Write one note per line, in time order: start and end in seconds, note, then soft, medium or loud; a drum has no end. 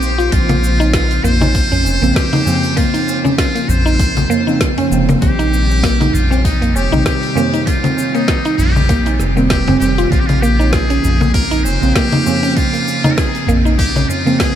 0.00 0.29 A#1 medium
0.00 0.28 C3 medium
0.00 0.29 D#3 medium
0.00 0.29 G3 medium
0.00 0.30 C4 medium
0.00 0.33 G4 loud
0.00 0.34 C5 medium
0.00 shaker medium
0.18 0.31 F4 loud
0.18 shaker soft
0.30 1.20 A#1 loud
0.30 1.98 C#3 medium
0.30 1.99 F3 medium
0.30 1.99 A#3 medium
0.30 2.00 C4 medium
0.30 0.93 F4 loud
0.30 kick loud
0.30 open hi-hat medium
0.30 shaker soft
0.49 0.62 A#3 medium
0.49 open hi-hat soft
0.49 low conga medium
0.49 shaker soft
0.64 shaker medium
0.80 0.93 D#4 loud
0.80 tabla tin medium
0.80 shaker soft
0.93 1.25 F4 loud
0.93 kick loud
0.93 snare loud
0.93 open hi-hat medium
0.93 shaker soft
1.11 open hi-hat soft
1.11 shaker soft
1.24 1.87 A#1 medium
1.24 1.39 A#3 loud
1.24 2.17 C5 loud
1.24 tabla ge medium
1.24 shaker medium
1.41 1.54 D#4 medium
1.41 tabla na medium
1.41 tabla tin soft
1.41 low conga medium
1.41 shaker soft
1.55 kick loud
1.55 open hi-hat medium
1.55 shaker soft
1.72 2.01 C#4 medium
1.72 open hi-hat soft
1.72 tabla tin soft
1.72 tabla ge loud
1.72 shaker soft
1.85 1.99 F1 loud
1.85 tabla na medium
1.85 shaker medium
2.02 2.13 A#1 medium
2.02 2.43 C#3 loud
2.02 2.43 F3 medium
2.02 2.15 A#3 medium
2.02 2.43 A#3 medium
2.02 2.44 C4 loud
2.02 tabla tin soft
2.02 shaker soft
2.15 2.79 G4 loud
2.15 kick loud
2.15 snare loud
2.15 open hi-hat medium
2.15 shaker soft
2.33 2.46 D#4 medium
2.33 open hi-hat soft
2.33 low conga medium
2.45 2.73 C#3 medium
2.45 2.74 F3 medium
2.45 2.74 A#3 medium
2.45 2.75 C4 loud
2.45 tabla na medium
2.45 tabla ge medium
2.45 shaker medium
2.63 open hi-hat soft
2.63 shaker soft
2.75 4.43 C#3 medium
2.75 4.44 F3 medium
2.75 2.92 A#3 loud
2.75 4.44 A#3 medium
2.75 4.45 C4 medium
2.75 3.22 F4 loud
2.75 kick loud
2.75 open hi-hat medium
2.75 shaker soft
2.94 3.07 D#4 medium
2.94 open hi-hat soft
2.94 shaker soft
3.08 tabla na soft
3.08 shaker medium
3.24 3.54 C#4 medium
3.24 tabla tin medium
3.24 low conga medium
3.24 shaker soft
3.38 3.71 F4 medium
3.38 kick loud
3.38 snare loud
3.38 open hi-hat medium
3.38 shaker soft
3.55 3.68 A#3 medium
3.55 open hi-hat soft
3.55 shaker soft
3.69 4.26 A#1 medium
3.69 4.61 C5 loud
3.69 tabla ge medium
3.69 shaker medium
3.86 3.99 D#4 loud
3.86 shaker soft
3.99 kick loud
3.99 open hi-hat medium
3.99 shaker soft
4.17 open hi-hat soft
4.17 low conga medium
4.17 shaker soft
4.29 4.45 A#3 loud
4.29 tabla tin medium
4.29 tabla ge medium
4.29 shaker medium
4.46 4.88 C#3 medium
4.46 4.88 F3 medium
4.46 4.88 A#3 medium
4.46 4.89 C4 loud
4.46 4.60 D#4 medium
4.46 shaker soft
4.61 kick loud
4.61 snare loud
4.61 open hi-hat medium
4.61 shaker soft
4.78 5.07 C#4 medium
4.78 open hi-hat soft
4.78 tabla na medium
4.78 tabla ge medium
4.90 5.16 F1 medium
4.90 5.18 C#3 loud
4.90 5.19 F3 medium
4.90 5.19 A#3 medium
4.90 5.19 C4 loud
4.90 shaker medium
5.08 5.21 A#3 medium
5.08 open hi-hat soft
5.08 tabla na soft
5.08 tabla tin soft
5.08 low conga medium
5.08 shaker soft
5.20 6.10 A#1 loud
5.20 6.88 C3 medium
5.20 6.88 D#3 medium
5.20 6.89 G3 medium
5.20 6.90 C4 medium
5.20 6.15 G4 loud
5.20 kick loud
5.20 open hi-hat medium
5.20 shaker soft
5.39 5.52 D#4 loud
5.39 open hi-hat soft
5.39 shaker soft
5.54 shaker medium
5.70 tabla tin medium
5.70 shaker soft
5.83 5.99 A#3 loud
5.83 kick loud
5.83 snare loud
5.83 open hi-hat medium
5.83 shaker soft
6.00 6.13 D#4 medium
6.00 open hi-hat soft
6.00 low conga medium
6.00 shaker soft
6.13 6.77 A#1 medium
6.13 6.44 F4 medium
6.13 tabla ge medium
6.13 shaker medium
6.30 6.60 C4 medium
6.30 tabla na medium
6.30 tabla tin soft
6.30 shaker soft
6.45 6.77 D#4 medium
6.45 kick loud
6.45 open hi-hat medium
6.45 shaker soft
6.61 6.74 A#3 medium
6.61 open hi-hat soft
6.61 tabla tin soft
6.61 tabla ge loud
6.61 shaker soft
6.75 6.89 F1 loud
6.75 7.05 G4 loud
6.75 tabla na medium
6.75 shaker medium
6.91 7.03 A#1 medium
6.91 7.32 C3 medium
6.91 7.33 D#3 medium
6.91 7.33 G3 medium
6.91 7.34 C4 loud
6.91 7.05 D#4 loud
6.91 tabla tin medium
6.91 low conga medium
6.91 shaker soft
7.06 7.68 G4 loud
7.06 kick loud
7.06 snare loud
7.06 open hi-hat medium
7.06 shaker soft
7.23 open hi-hat soft
7.35 7.63 C3 loud
7.35 7.63 D#3 medium
7.35 7.64 G3 medium
7.35 7.52 A#3 loud
7.35 7.64 C4 loud
7.35 tabla na medium
7.35 tabla ge medium
7.35 shaker medium
7.54 7.66 D#4 medium
7.54 open hi-hat soft
7.54 shaker soft
7.65 9.33 C3 medium
7.65 9.33 D#3 medium
7.65 9.34 G3 medium
7.65 8.16 F4 loud
7.65 kick loud
7.65 open hi-hat medium
7.65 shaker soft
7.69 9.35 C4 medium
7.84 8.13 C4 medium
7.84 open hi-hat soft
7.84 low conga medium
7.84 shaker soft
7.97 tabla na soft
7.97 shaker medium
8.14 8.27 A#3 medium
8.14 8.57 D#4 medium
8.14 open hi-hat soft
8.14 tabla tin medium
8.14 shaker soft
8.28 kick loud
8.28 snare loud
8.28 open hi-hat medium
8.28 shaker soft
8.45 8.58 D#4 loud
8.45 open hi-hat soft
8.45 shaker soft
8.57 9.22 A#1 medium
8.57 9.19 G4 loud
8.57 tabla ge medium
8.57 shaker medium
8.76 low conga medium
8.76 shaker soft
8.89 9.05 A#3 loud
8.89 kick loud
8.89 open hi-hat medium
8.89 shaker soft
9.05 9.19 D#4 medium
9.05 open hi-hat soft
9.05 tabla na medium
9.05 shaker soft
9.19 9.77 F1 medium
9.19 snare soft
9.19 tabla tin medium
9.19 tabla ge medium
9.19 shaker medium
9.35 9.77 C3 medium
9.35 9.78 D#3 medium
9.35 9.78 G3 medium
9.35 9.50 A#3 medium
9.35 9.78 C4 loud
9.35 shaker soft
9.50 9.79 G4 loud
9.50 kick loud
9.50 snare loud
9.50 open hi-hat medium
9.50 shaker soft
9.68 9.75 C4 loud
9.68 open hi-hat soft
9.68 tabla na medium
9.68 low conga medium
9.68 tabla ge medium
9.79 10.06 F1 medium
9.79 10.08 C3 loud
9.79 10.08 D#3 medium
9.79 10.09 G3 medium
9.79 10.09 C4 loud
9.79 10.12 G4 medium
9.79 shaker medium
9.98 10.10 F4 loud
9.98 open hi-hat soft
9.98 tabla na soft
9.98 tabla tin soft
9.98 shaker soft
10.10 10.99 A#1 loud
10.10 11.78 C#3 medium
10.10 11.78 F3 medium
10.10 11.79 A#3 medium
10.10 11.80 C4 medium
10.10 10.21 F4 loud
10.10 kick loud
10.10 open hi-hat medium
10.10 shaker soft
10.20 10.28 G4 medium
10.27 10.43 F4 loud
10.27 open hi-hat soft
10.27 low conga medium
10.27 shaker soft
10.41 10.58 A#3 loud
10.41 10.73 G4 medium
10.41 shaker medium
10.59 10.72 D#4 medium
10.59 tabla tin medium
10.59 shaker soft
10.72 11.33 G#4 loud
10.72 kick loud
10.72 snare loud
10.72 open hi-hat medium
10.72 shaker soft
10.90 11.19 C#4 medium
10.90 open hi-hat soft
10.90 shaker soft
11.04 11.67 A#1 medium
11.04 tabla ge medium
11.04 shaker medium
11.20 11.34 A#3 medium
11.20 tabla na medium
11.20 tabla tin soft
11.20 low conga medium
11.20 shaker soft
11.34 11.66 A#4 loud
11.34 kick loud
11.34 open hi-hat medium
11.34 shaker soft
11.51 11.64 D#4 loud
11.51 open hi-hat soft
11.51 tabla tin soft
11.51 tabla ge medium
11.51 shaker soft
11.64 11.79 F1 medium
11.64 11.96 C5 loud
11.64 tabla na medium
11.64 shaker medium
11.81 11.93 A#1 medium
11.81 12.22 C#3 medium
11.81 12.23 F3 medium
11.81 12.23 A#3 medium
11.81 12.23 C4 loud
11.81 tabla tin soft
11.81 shaker soft
11.95 12.11 A#3 loud
11.95 12.58 G4 loud
11.95 kick loud
11.95 snare loud
11.95 open hi-hat medium
11.95 shaker soft
12.12 12.25 D#4 medium
12.12 open hi-hat soft
12.12 low conga medium
12.26 12.53 C#3 loud
12.26 12.53 F3 medium
12.26 12.54 A#3 medium
12.26 12.54 C4 loud
12.26 tabla na medium
12.26 tabla ge medium
12.26 shaker medium
12.43 12.72 C#4 medium
12.43 open hi-hat soft
12.43 shaker soft
12.55 14.23 C#3 medium
12.55 14.23 F3 medium
12.55 14.24 A#3 medium
12.55 13.13 F4 loud
12.55 kick loud
12.55 open hi-hat medium
12.55 shaker soft
12.59 14.25 C4 medium
12.73 12.86 A#3 medium
12.73 open hi-hat soft
12.73 shaker soft
12.88 tabla na soft
12.88 shaker medium
13.04 13.17 D#4 loud
13.04 tabla tin medium
13.04 low conga medium
13.04 shaker soft
13.11 13.19 A#4 medium
13.17 13.52 G#4 loud
13.17 kick loud
13.17 snare medium
13.17 open hi-hat medium
13.17 shaker soft
13.35 open hi-hat soft
13.35 shaker soft
13.47 14.05 A#1 medium
13.47 13.64 A#3 loud
13.47 tabla ge medium
13.47 shaker medium
13.65 13.78 D#4 medium
13.65 shaker soft
13.78 14.10 G4 loud
13.78 kick loud
13.78 open hi-hat medium
13.78 shaker soft
13.96 14.25 C#4 medium
13.96 open hi-hat soft
13.96 low conga medium
13.96 shaker soft
14.09 14.41 F4 loud
14.09 tabla tin medium
14.09 tabla ge medium
14.09 shaker medium
14.25 14.55 C#3 loud
14.25 14.55 F3 medium
14.25 14.39 A#3 medium
14.25 14.55 A#3 medium
14.25 14.55 C4 loud
14.25 shaker soft
14.40 14.55 G#4 loud
14.40 kick loud
14.40 snare loud
14.40 open hi-hat medium
14.40 shaker soft